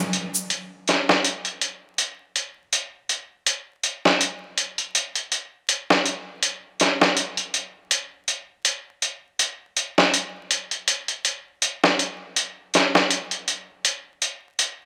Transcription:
0.13 closed hi-hat
0.35 shaker
0.50 closed hi-hat
0.88 snare, closed hi-hat
1.09 snare
1.25 closed hi-hat
1.45 closed hi-hat
1.61 closed hi-hat
1.98 closed hi-hat
2.36 closed hi-hat
2.73 closed hi-hat
3.09 closed hi-hat
3.46 closed hi-hat
3.83 closed hi-hat
4.05 snare
4.21 closed hi-hat
4.58 closed hi-hat
4.78 closed hi-hat
4.95 closed hi-hat
5.15 closed hi-hat
5.32 closed hi-hat
5.69 closed hi-hat
5.90 snare
6.06 closed hi-hat
6.43 closed hi-hat
6.80 snare, closed hi-hat
7.01 snare
7.17 closed hi-hat
7.37 closed hi-hat
7.54 closed hi-hat
7.91 closed hi-hat
8.28 closed hi-hat
8.65 closed hi-hat
9.02 closed hi-hat
9.39 closed hi-hat
9.77 closed hi-hat
9.98 snare
10.14 closed hi-hat
10.51 closed hi-hat
10.71 closed hi-hat
10.88 closed hi-hat
11.08 closed hi-hat
11.25 closed hi-hat
11.62 closed hi-hat
11.84 snare
11.99 closed hi-hat
12.36 closed hi-hat
12.74 snare, closed hi-hat
12.95 snare
13.10 closed hi-hat
13.31 closed hi-hat
13.48 closed hi-hat
13.85 closed hi-hat
14.22 closed hi-hat
14.59 closed hi-hat

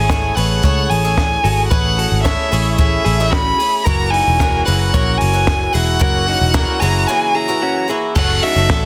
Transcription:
Already playing: G#1 C#4 E4 G#4 G#5
0.10 A3 C#4 E4 G#4 A4, kick, snare, closed hi-hat
0.35 A1 A3 C#4 E4 G#4 B4 F#5, open hi-hat
0.63 C#2 A3 C#4 E4 G#4 A4 C#5, kick, closed hi-hat
0.90 A1 G#5, open hi-hat
1.05 A3 C#4 E4 G#4
1.17 kick, snare, closed hi-hat
1.44 G#1 A3 C#4 E4 F#4 G#4 A4, open hi-hat
1.68 A1 A3 C#4 E4 G#4 B4 F#5, kick, closed hi-hat
1.72 G#4
1.98 F#4 A4, open hi-hat
2.12 G#1
2.23 A3 C#4 E4 A4 C#5 E5, kick, snare, closed hi-hat
2.27 G#4
2.51 A1 A3 C#4 E4 G#4, open hi-hat
2.77 A3 C#4 E4 G#4 E5, kick, closed hi-hat
3.05 A1 E4 G#4, open hi-hat
3.20 A3 C#4 E4 G#4
3.30 C#4 F#4 B5, kick, snare, closed hi-hat
3.58 A3 C#4 E4 G#4, open hi-hat
3.62 G#4
3.84 F#1 F#2 C#3 E3 A#3 E4 F#4 A#4 A#5, kick, closed hi-hat
4.10 D#4 F#4 G#5, open hi-hat
4.27 E1
4.39 F#2 C#3 E3 A#3 E4 F#4 A#4, kick, snare, closed hi-hat
4.65 F#1 F#2 C#3 E3 A#3 E4 F#4 G#4 B4 F#5, open hi-hat
4.94 A#1 F#2 C#3 E3 A#3 E4 F#4 A#4 C#5, kick, closed hi-hat
5.18 G#5, open hi-hat
5.22 F#1
5.33 F#2 C#3 E3 A#3 E4 F#4
5.47 kick, snare, closed hi-hat
5.73 E1 E3 A#3 E4 F#4 G#4 F#5, open hi-hat
5.99 F#1 F#2 C#3 E3 A#3 E4 F#4 A#4, kick, closed hi-hat
6.28 D#4 F#4, open hi-hat
6.41 E1
6.54 F#2 C#3 E3 A#3 E4 F#4 A#4, kick, snare, closed hi-hat
6.80 F#1 F#2 C#3 E3 A#3 E4 F#4 G#4 A#5, open hi-hat
7.07 F#2 C#3 E3 A#3 E4 F#4 G#5
7.34 E4 G#4 A#5
7.48 F#2 C#3 E3 A#3 E4 F#4
7.62 C#4 F#4
7.88 E3 A#3 E4 F#4 G#4
8.16 F#1 F#2 C#3 E3 A3 C#4 F#4 A4 F#5, kick, crash
8.43 D#4 F#4 E5, open hi-hat
8.56 F#1 E3 A3 C#4 F#4
8.70 A1 F#4 A4, kick, snare, closed hi-hat

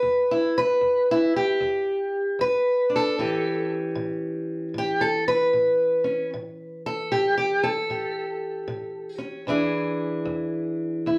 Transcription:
Already playing: B4
0.03 E2
0.31 E4
0.58 B4
0.81 E2
1.11 E4
1.36 G4
1.60 E2
2.39 E2 B4
2.90 D4
2.96 A4
3.18 A2 E3 C#4 G4
3.95 A2
4.74 A2
4.78 G4
5.01 A4
5.28 B4
5.53 A2
6.04 C#4
6.34 A2
6.86 A4
7.12 A2 G4
7.38 G4
7.63 A4
7.90 A2 G4
8.68 A2
9.18 C#4
9.47 E2 E3 D4 E4 G#4
10.25 E2
11.06 E2 E4

